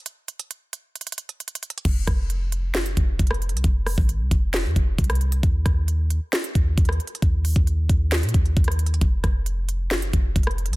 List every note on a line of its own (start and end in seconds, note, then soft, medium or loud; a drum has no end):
0.06 closed hi-hat medium
0.28 closed hi-hat medium
0.39 closed hi-hat medium
0.51 closed hi-hat medium
0.73 closed hi-hat medium
0.96 closed hi-hat soft
1.01 closed hi-hat medium
1.07 closed hi-hat medium
1.12 closed hi-hat medium
1.18 closed hi-hat medium
1.29 closed hi-hat soft
1.40 closed hi-hat soft
1.48 closed hi-hat medium
1.55 closed hi-hat medium
1.63 closed hi-hat medium
1.70 closed hi-hat medium
1.78 closed hi-hat medium
1.85 2.07 F1 loud
1.85 kick loud
1.85 closed hi-hat medium
1.85 crash loud
2.07 2.76 F1 loud
2.07 kick medium
2.07 cross-stick medium
2.07 closed hi-hat medium
2.30 closed hi-hat medium
2.52 closed hi-hat medium
2.75 2.96 F#1 loud
2.75 snare loud
2.75 clap medium
2.75 closed hi-hat soft
2.86 closed hi-hat medium
2.97 3.19 F1 loud
2.97 kick loud
2.97 closed hi-hat medium
3.19 3.54 F1 loud
3.19 kick loud
3.19 closed hi-hat medium
3.27 cross-stick loud
3.27 closed hi-hat medium
3.34 closed hi-hat soft
3.42 closed hi-hat medium
3.49 3.64 C2 loud
3.49 closed hi-hat medium
3.57 closed hi-hat medium
3.64 3.96 F1 loud
3.64 kick loud
3.64 closed hi-hat medium
3.86 cross-stick medium
3.86 open hi-hat medium
3.98 4.22 G#1 loud
3.98 kick medium
4.09 closed hi-hat medium
4.20 4.31 C2 loud
4.31 4.66 F1 loud
4.31 kick medium
4.31 closed hi-hat medium
4.54 snare loud
4.54 clap medium
4.54 closed hi-hat medium
4.65 4.76 F2 loud
4.76 4.98 F1 loud
4.76 kick loud
4.76 closed hi-hat medium
4.98 5.41 C2 loud
4.98 kick loud
4.98 closed hi-hat medium
5.04 closed hi-hat medium
5.10 cross-stick loud
5.10 closed hi-hat medium
5.15 closed hi-hat medium
5.21 closed hi-hat medium
5.32 closed hi-hat medium
5.43 5.65 D#2 loud
5.43 kick loud
5.43 closed hi-hat medium
5.66 6.19 D#2 loud
5.66 kick medium
5.66 cross-stick medium
5.66 closed hi-hat medium
5.88 closed hi-hat medium
6.10 closed hi-hat medium
6.33 snare loud
6.33 clap medium
6.33 closed hi-hat soft
6.44 closed hi-hat medium
6.55 6.77 D#2 loud
6.55 kick loud
6.55 closed hi-hat medium
6.78 6.99 D#2 loud
6.78 kick loud
6.78 closed hi-hat medium
6.85 cross-stick loud
6.85 closed hi-hat medium
6.92 closed hi-hat soft
7.00 closed hi-hat medium
7.07 closed hi-hat medium
7.15 closed hi-hat medium
7.22 7.55 D#2 loud
7.22 kick loud
7.22 closed hi-hat medium
7.45 closed hi-hat medium
7.45 open hi-hat medium
7.56 7.88 D#2 loud
7.56 kick medium
7.56 closed hi-hat medium
7.67 closed hi-hat medium
7.89 8.25 D#2 loud
7.89 kick medium
7.89 closed hi-hat medium
8.12 snare loud
8.12 clap medium
8.12 closed hi-hat soft
8.18 closed hi-hat medium
8.23 8.34 A#2 loud
8.23 closed hi-hat medium
8.29 closed hi-hat medium
8.34 8.56 D#2 loud
8.34 kick medium
8.34 closed hi-hat medium
8.45 closed hi-hat soft
8.57 9.00 D#2 loud
8.57 kick loud
8.57 closed hi-hat soft
8.64 cross-stick loud
8.64 closed hi-hat medium
8.72 closed hi-hat medium
8.79 closed hi-hat medium
8.86 closed hi-hat medium
8.94 closed hi-hat medium
9.01 9.23 F1 loud
9.01 kick loud
9.01 closed hi-hat medium
9.24 9.93 F1 loud
9.24 kick loud
9.24 cross-stick medium
9.24 closed hi-hat medium
9.46 closed hi-hat medium
9.69 closed hi-hat medium
9.91 10.12 F#1 loud
9.91 snare loud
9.91 clap medium
9.91 closed hi-hat soft
10.02 closed hi-hat medium
10.13 10.35 F1 loud
10.13 kick loud
10.13 closed hi-hat medium
10.36 10.71 F1 loud
10.36 kick loud
10.36 closed hi-hat medium
10.43 cross-stick loud
10.43 closed hi-hat medium
10.51 closed hi-hat soft
10.58 closed hi-hat soft
10.66 10.76 C2 loud
10.66 closed hi-hat medium
10.73 closed hi-hat medium